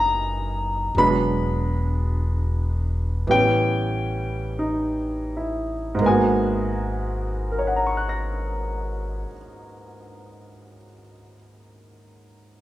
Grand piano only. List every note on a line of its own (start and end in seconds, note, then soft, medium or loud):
0.00 0.93 F#3 soft
0.00 0.95 A#3 soft
0.00 0.96 B3 soft
0.00 0.99 D#4 soft
0.00 0.96 G#5 medium
0.00 0.98 A#5 medium
0.97 3.28 F#3 soft
0.97 3.28 G#3 soft
0.97 3.29 B3 soft
0.97 3.29 D4 soft
0.97 2.86 B5 medium
3.27 6.00 E3 soft
3.27 6.01 G3 soft
3.27 6.01 B3 soft
3.27 4.55 G5 medium
3.32 6.02 C#4 soft
4.59 5.73 D#4 soft
5.37 6.39 E4 soft
5.95 9.23 G#2 medium
5.99 9.28 G#3 soft
5.99 9.30 A#3 soft
6.05 9.33 B3 soft
6.05 9.36 F#4 medium
6.05 9.31 G#5 medium
7.52 10.76 A#4 soft
7.59 10.83 C#5 soft
7.67 10.92 F#5 soft
7.76 11.01 A#5 soft
7.87 11.11 C#6 soft
7.97 11.22 F#6 soft
8.09 11.34 A#6 soft